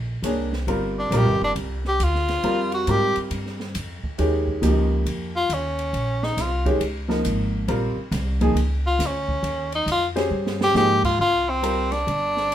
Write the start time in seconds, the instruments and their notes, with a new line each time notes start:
Already playing: upright bass A#1
0.22 upright bass C2, grand piano A#3 D4 G#4 C#5, hi-hat pedal, ride
0.53 snare
0.67 upright bass G1, grand piano G3 C4 F4 A#4, ride
0.99 tenor saxophone D4
1.11 upright bass A#1, grand piano G3 C4 F4 A#4, hi-hat pedal, ride
1.17 tenor saxophone G4
1.25 upright bass G1
1.41 upright bass F1, tenor saxophone D4
1.56 upright bass C2, ride
1.85 tenor saxophone G4, snare
2.00 upright bass D2, tenor saxophone F4, hi-hat pedal, ride
2.15 snare
2.28 snare, ride
2.43 upright bass F2, grand piano G3 C4 F4 A#4, ride
2.72 tenor saxophone F#4, ride
2.87 upright bass G#2, grand piano G3 C4 F4 A#4, tenor saxophone G4, hi-hat pedal, ride
3.16 muted upright bass stroke, ride
3.31 upright bass G2, ride
3.46 snare
3.60 snare
3.75 upright bass F2, hi-hat pedal, ride
4.04 muted upright bass stroke, kick
4.18 upright bass D#2, grand piano D#3 G#3 C#4 G4, ride
4.47 kick
4.62 upright bass C#2, grand piano F3 A#3 D#4 G4, hi-hat pedal, ride
5.06 upright bass F2, ride
5.36 tenor saxophone F4
5.49 upright bass D#2, hi-hat pedal, ride
5.54 tenor saxophone C#4
5.79 ride
5.93 upright bass A#1, ride
6.23 tenor saxophone D#4, snare
6.37 upright bass C2, snare, hi-hat pedal, ride
6.42 tenor saxophone F4
6.65 grand piano D#3 G#3 C#4 G4, kick, ride
6.80 upright bass C#2, ride
7.08 grand piano F3 A#3 D#4 A#4, snare
7.25 upright bass G#1, hi-hat pedal, ride
7.68 upright bass A#1, grand piano G3 C4 F4 A#4, ride
7.97 muted upright bass stroke
8.11 upright bass C2, snare, hi-hat pedal, ride
8.41 grand piano F3 A#3 D#4 G#4, kick, ride
8.55 upright bass C#2, ride
8.87 tenor saxophone F4
8.99 upright bass D2, snare, hi-hat pedal, ride
9.06 tenor saxophone C#4
9.29 kick
9.43 upright bass D#2, ride
9.72 tenor saxophone D#4, ride
9.86 upright bass F2, hi-hat pedal, ride
9.92 tenor saxophone F4
10.15 grand piano C#4 G4 G#4 C5, snare, ride
10.31 upright bass G2
10.47 snare
10.61 tenor saxophone G4, snare
10.74 upright bass G#2, grand piano F3 A#3 D#4 G#4, tenor saxophone G4, snare, hi-hat pedal
11.04 tenor saxophone F4, kick, crash
11.19 upright bass C2, tenor saxophone F4
11.50 tenor saxophone C4
11.62 grand piano G3 C4 F4 A#4, hi-hat pedal, ride
11.92 tenor saxophone D4, snare, ride
12.07 upright bass G1, ride
12.37 snare